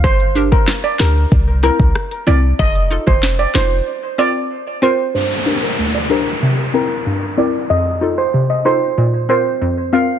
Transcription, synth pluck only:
\new Staff \with { instrumentName = "Synth pluck" } { \time 4/4 \key g \minor \tempo 4 = 94 << { r8 <d' g' bes'>8 r8 <d' g' bes'>8 r8 <c' e' bes'>8 r8 <c' e' bes'>8 | r8 <ees' f' a'>8 r8 <ees' f' c''>8 r8 <c' f' bes'>8 r8 <c' f' bes'>8 | r8 <d' g' bes'>8 r8 <d' g' c''>8 r8 <c' e' bes'>8 r8 <c' e' bes'>8 | r8 <ees' f' a'>8 r8 <ees' f' a'>8 r8 <c' f' bes'>8 r8 <c' f' bes'>8 | } \\ { r1 | r1 | g,4 d,4 c4 g,4 | f,4 c4 bes,4 f,4 | } >> }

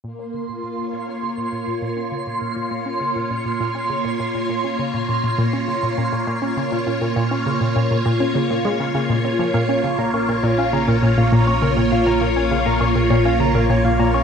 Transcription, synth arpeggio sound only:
\new Staff \with { instrumentName = "Synth arpeggio sound" } { \clef bass \time 4/4 \key bes \minor \tempo 4 = 101 bes,16 des'16 des16 bes,16 bes,16 bes,16 bes,16 des'16 des16 bes,16 bes,16 bes,16 bes,16 des'16 des16 bes,16 | bes,16 bes,16 bes,16 des'16 des16 bes,16 bes,16 bes,16 bes,16 des'16 des16 bes,16 bes,16 bes,16 bes,16 des'16 | des16 bes,16 bes,16 bes,16 bes,16 des'16 des16 bes,16 bes,16 bes,16 bes,16 des'16 des16 bes,16 bes,16 bes,16 | bes,16 des'16 des16 bes,16 bes,16 bes,16 bes,16 des'16 des16 bes,16 aes16 des16 des16 bes,16 des'16 f16 |
bes,16 des'16 des16 bes,16 bes,16 bes,16 bes,16 des'16 des16 bes,16 bes,16 bes,16 bes,16 des'16 des16 bes,16 | bes,16 bes,16 bes,16 des'16 des16 bes,16 bes,16 bes,16 bes,16 des'16 des16 bes,16 bes,16 bes,16 bes,16 des'16 | }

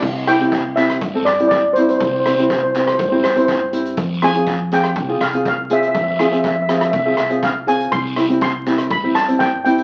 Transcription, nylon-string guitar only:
\new Staff \with { instrumentName = "Nylon-string guitar" } { \time 4/4 \key c \major \tempo 4 = 122 r8 <c' e' g'>16 <c' e' g'>8 r16 <c' e' g'>8 r16 <c' e' a'>16 r16 <c' e' g'>8 r16 <c' e' g'>8 | r8 <c' e' g'>16 <c' e' g'>8 r16 <c' e' g'>8 r16 <c' e' g'>16 r16 <c' e' g'>8 r16 <c' e' g'>8 | r8 <c' f' aes'>16 <c' f' aes'>8 r16 <c' f' aes'>8 r16 <c' f' aes'>16 r16 <c' f' aes'>8 r16 <c' f' aes'>8 | r8 <c' f' aes'>16 <c' f' aes'>8 r16 <c' f' aes'>8 r16 <c' f' aes'>16 r16 <c' f' aes'>8 r16 <c' f' aes'>8 |
r8 <c' e' g'>16 <c' e' g'>8 r16 <c' e' g'>8 r16 <c' e' g'>16 r16 <c' e' g'>8 r16 <c' e' g'>8 | }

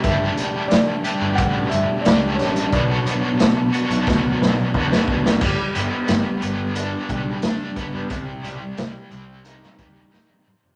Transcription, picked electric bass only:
\new Staff \with { instrumentName = "Picked electric bass" } { \clef bass \time 4/4 \key g \major \tempo 4 = 89 g,,8 r4 r16 g,,16 a,,8 g,,16 r16 cis,8 a,,8 | b,,8 r4 r16 b,,16 d,8 b,,16 r16 e,8 d,8 | g,,16 r16 g,,16 r16 g,,16 r16 g,,4 b,,8 r8. g,16 | c,16 r16 c,16 r16 c,16 r16 c,4 ees,8 r8. c16 | }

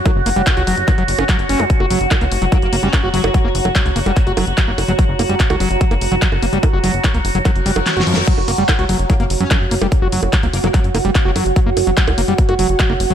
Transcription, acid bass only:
\new Staff \with { instrumentName = "Acid bass" } { \clef bass \time 4/4 \key fis \major \tempo 4 = 146 fis16 r16 ais16 g16 r16 fis'16 fis16 r16 fis16 fis16 r16 cis'16 fis16 r16 cis'16 fis16 | r16 fis'16 fis16 r16 fis16 ais16 r16 fis16 fis16 r16 ais16 g16 r16 fis'16 fis16 r16 | fis16 ais16 r16 fis16 fis16 r16 ais16 g16 r16 fis'16 fis16 r16 fis16 ais16 r16 fis16 | fis16 r16 ais16 g16 r16 fis'16 fis16 r16 fis16 ais16 r16 fis16 fis16 r16 ais16 g16 |
r16 fis'16 fis16 r16 fis16 ais16 r16 fis16 fis16 r16 g16 fis16 r16 fis'16 eis16 r16 | fis16 r16 ais16 g16 r16 fis'16 fis16 r16 fis16 ais16 r16 fis16 fis16 r16 ais16 g16 | r16 fis'16 fis16 r16 fis16 ais16 r16 fis16 fis16 r16 ais16 g16 r16 fis'16 fis16 r16 | fis16 ais16 r16 fis16 fis16 r16 ais16 g16 r16 fis'16 fis16 r16 fis16 ais16 r16 fis16 | }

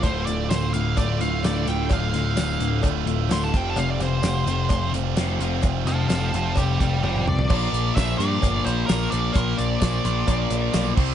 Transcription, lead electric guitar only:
\new Staff \with { instrumentName = "Lead electric guitar" } { \time 4/4 \key bes \lydian \tempo 4 = 129 c''8 d''8 c''8 f''8 d''8 f''8 d''8 g''8 | f''2 r4 c'''16 a''16 g''16 a''16 | f''16 d''16 c''2 r4. | r8 <f'' a''>8 <f'' a''>8 <f'' a''>8 <d'' g''>8 <d'' g''>8 <d'' g''>8 d''8 |
d''8 d''8 e''8 d''4 c''8 bes'8 d''8 | bes'8 d''8 d''2~ d''8 r8 | }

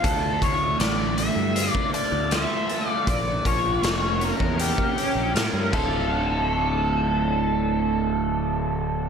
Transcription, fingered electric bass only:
\new Staff \with { instrumentName = "Fingered electric bass" } { \clef bass \time 4/4 \key d \minor \tempo 4 = 79 d,8 d,8 a,,8. g,8 r8 d,8 r8. | bes,,8 bes,,8 f,,8. e,8 r8 bes,,16 a,16 g,16 d,,8~ | d,,1 | }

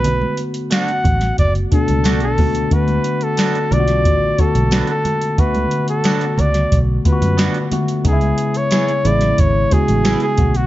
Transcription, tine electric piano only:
\new Staff \with { instrumentName = "Tine electric piano" } { \time 4/4 \key d \lydian \tempo 4 = 90 <d a b fis'>4 r4. <b, a b d'>4 <d a b fis'>8 | <d a b fis'>4 r8 <d a b eis' fis'>4 <d a b fis'>4 r8 | <d a b fis'>4. r4 <d a b eis' fis'>4 <d a b fis'>8 | <cis gis b dis' e'>4 r8 <cis gis b e'>4 <cis gis b fis'>4 <d a b fis'>8 | }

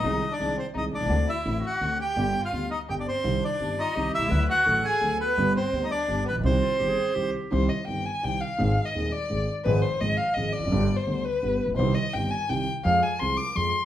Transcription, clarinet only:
\new Staff \with { instrumentName = "Clarinet" } { \time 3/4 \key c \minor \tempo 4 = 169 r2. | r2. | r2. | r4. f'8 g'4 |
b'4 a'2 | r2. | r8 f'8 g'16 aes'8. g'4 | r2. |
r2. | r2. | r2. | r2. |
r2. | }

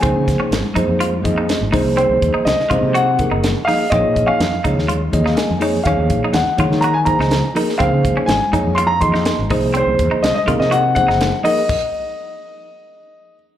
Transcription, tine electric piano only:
\new Staff \with { instrumentName = "Tine electric piano" } { \time 4/4 \key aes \mixolydian \tempo 4 = 124 << { r1 | r1 | r2 r8 des''16 f''16 aes''4 | r1 |
r1 | r1 | r1 | } \\ { <f bes ees' aes' c''>4 r8 <f bes ees' aes' c''>8 r8 <f bes ees' aes' ees''>8 r8 <f bes ees' aes' c''>8~ | <f bes ees' aes' c''>4 r8 <f bes ees' aes' c''>8 r8 <f bes ees' aes' bes'>8 r8 <f bes ees' aes' ees''>8 | <f bes ees' aes' des''>4 r8 <f bes ees' aes' des''>8 r8 <f bes ees' aes' ees''>8 r8 <f bes ees' aes' des''>8 | <f bes ees' aes' des''>4 r8 <f bes ees' aes' des''>8 r8 <f bes ees' aes' c''>8 r8 <f bes ees' aes' bes'>8 |
<f bes ees' aes' c''>4 r8 <f bes ees' aes' des''>8 r8 <f bes ees' aes' ees''>8 r8 <f bes ees' aes' c''>8~ | <f bes ees' aes' c''>4 r8 <f bes ees' aes' bes'>8 r8 <f bes ees' aes' c''>8 r8 <f bes ees' aes' bes'>8 | r1 | } >> }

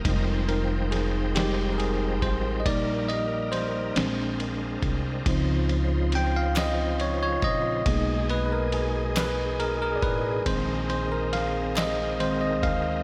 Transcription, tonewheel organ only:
\new Staff \with { instrumentName = "Tonewheel organ" } { \time 6/8 \key bes \mixolydian \tempo 4. = 46 << { <bes' ees''>16 r2 r8. | r2. | r2. | r2. |
r2. | } \\ { <f c' ees' g''>2. | <g bes ees' bes'>4. <aes c' d' bes'>4. | <des f ees' c''>2. | <ces aes ees' aes'>2. |
<aes c' ees' bes'>2. | } >> }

